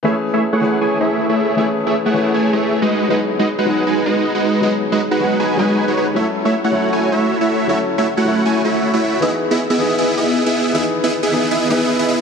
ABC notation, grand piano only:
X:1
M:4/4
L:1/8
Q:1/4=157
K:Alyd
V:1 name="Grand piano"
[E,A,CG]3 [E,A,CG]4- [E,A,CG] | [E,A,CG]3 [E,A,CG]4 z | [F,B,DG]3 [F,B,DG]4- [F,B,DG] | [F,B,DG]3 [F,B,DG]2 [F,B,DB]3 |
[F,CEA]3 [F,CEA]4- [F,CEA] | [F,CEA]3 [F,CEA]4- [F,CEA] | [E,B,DG]3 [E,B,DG]4- [E,B,DG] | [E,B,DG]3 [E,B,DG]2 [E,B,DB]3 |]